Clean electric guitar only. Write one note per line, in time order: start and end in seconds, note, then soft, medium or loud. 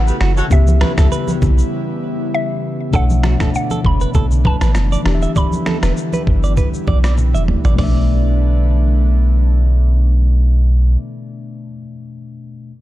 0.21 0.31 F#4 medium
0.37 0.46 A4 medium
0.81 0.92 B4 medium
0.98 1.07 A4 medium
1.12 1.31 B4 medium
2.94 3.04 A4 medium
3.24 3.34 F#4 medium
3.41 3.49 A4 medium
3.71 3.79 A4 medium
4.01 4.10 B4 medium
4.15 4.25 A4 medium
4.45 4.56 B4 medium
4.62 4.70 B4 medium
4.92 5.01 D5 medium
5.23 5.31 E5 medium
5.36 5.46 D5 medium
5.67 5.77 A4 medium
5.83 5.92 B4 medium
6.14 6.22 B4 medium
6.44 6.52 D5 medium
6.57 6.68 B4 medium
6.88 6.98 D5 medium
7.04 7.13 D5 medium
7.35 7.43 E5 medium
7.65 7.73 D5 medium
7.79 9.56 D5 medium